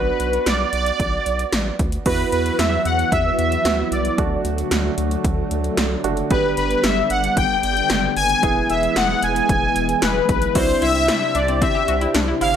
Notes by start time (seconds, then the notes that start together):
Already playing: B1 B3 D4 F#4 B4
0.20 B1, closed hi-hat
0.33 closed hi-hat
0.46 B1 D5, snare, closed hi-hat
0.73 B1 D5, closed hi-hat
0.86 closed hi-hat
1.00 B1, kick, closed hi-hat
1.26 B1, closed hi-hat
1.39 closed hi-hat
1.53 A1, snare, closed hi-hat
1.79 D2, kick, closed hi-hat
1.92 closed hi-hat
2.06 E2 E3 F#3 B3 E4 F#4 B4, kick, closed hi-hat, crash
2.32 E2 B4, closed hi-hat
2.46 closed hi-hat
2.59 E2 E5, snare, closed hi-hat
2.85 E2 F#5, closed hi-hat
2.99 closed hi-hat
3.12 E2 E5, kick, closed hi-hat
3.38 E2 E5, closed hi-hat
3.52 closed hi-hat
3.65 D2 B3 E4 F#4, snare, closed hi-hat
3.92 C2 D5, closed hi-hat
4.05 closed hi-hat
4.18 D2 D3 A3 D4 F#4, kick, closed hi-hat
4.45 D2, closed hi-hat
4.58 closed hi-hat
4.71 D2, snare, closed hi-hat
4.98 D2, closed hi-hat
5.11 closed hi-hat
5.24 D2, kick, closed hi-hat
5.51 D2, closed hi-hat
5.64 closed hi-hat
5.77 C2, snare, closed hi-hat
6.04 F#1 A3 D4 F#4, closed hi-hat
6.17 closed hi-hat
6.30 G1 G3 B3 D4 G4 B4, kick, closed hi-hat
6.57 G1 B4, closed hi-hat
6.71 closed hi-hat
6.84 G1 E5, snare, closed hi-hat
7.10 G1 F#5, closed hi-hat
7.24 closed hi-hat
7.37 G1 G5, kick, closed hi-hat
7.63 G1 G5, closed hi-hat
7.77 closed hi-hat
7.90 F#1, snare, closed hi-hat
8.16 F#1 G#5, open hi-hat
8.30 closed hi-hat
8.43 E1 E3 G#3 B3 E4 G#4, kick, closed hi-hat
8.69 E1 E5, closed hi-hat
8.83 closed hi-hat
8.96 E1 F#5, snare, closed hi-hat
9.23 E1 G#5, closed hi-hat
9.36 closed hi-hat
9.49 E1, kick, closed hi-hat
9.76 E1, closed hi-hat
9.89 closed hi-hat
10.02 E1 B4, snare, closed hi-hat
10.29 B1, kick, closed hi-hat
10.42 closed hi-hat
10.55 C2 C3 C4 D4 E4 F#4 G4 C5, kick, closed hi-hat, crash
10.82 C2 E4 E5, closed hi-hat
10.95 closed hi-hat
11.08 E4, snare, closed hi-hat
11.35 C2 D4 D5, closed hi-hat
11.48 C4, closed hi-hat
11.62 C4 E5, kick, closed hi-hat
11.75 G4
11.88 C2 F#4, closed hi-hat
12.01 E4, closed hi-hat
12.14 C2 D4, snare, closed hi-hat
12.28 E4
12.41 G1 E4 F5, open hi-hat